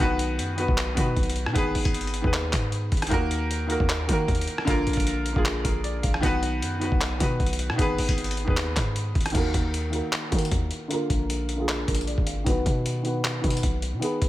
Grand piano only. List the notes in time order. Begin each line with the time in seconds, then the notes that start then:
Already playing: D#3
0.00 B3 F#4 B4
0.56 D#3 B3 F#4
0.61 B4
0.94 D#3 B3 F#4
1.00 B4
1.53 D#3 B3 G#4
1.58 B4
2.21 D#3 B3 G#4
2.27 B4
3.08 D#3 A#3 F#4
3.14 A#4
3.67 D#3 A#3 F#4
3.72 A#4
4.07 D#3 A#3 F#4
4.13 A#4
4.65 D3 A#3 F4
4.70 A#4
5.33 D3 A#3 F4
5.38 G#4
5.65 A#4
5.84 D5
6.03 F5
6.21 D#3 B3 F#4
6.26 B4
6.79 D#3 B3 F#4
6.85 B4
7.18 D#3 B3 F#4
7.23 B4
7.76 D#3 B3 G#4
7.81 B4
8.45 D#3 B3 G#4
8.50 B4
9.32 D#3 A#3 F#4
9.37 A#4
9.90 D#3 A#3 F#4
9.95 A#4
10.30 D#3 A#3 F#4
10.36 A#4
10.88 D3 A#3 F4
10.93 A#4
11.56 D3 A#3 F4
11.61 G#4
11.88 A#4
12.07 D5
12.26 F5
12.44 D#3 B3 F#4
12.50 B4
13.03 D#3 B3 F#4
13.08 B4
13.41 D#3 B3 F#4
13.47 B4
13.99 D#3 B3 G#4
14.05 B4